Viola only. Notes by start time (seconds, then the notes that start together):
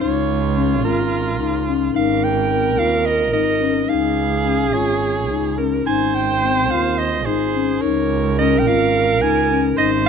0.01 F4
1.95 A#4
3.89 G#4
5.58 A#4
5.86 C5
7.26 G#4
7.81 A#4
9.77 C5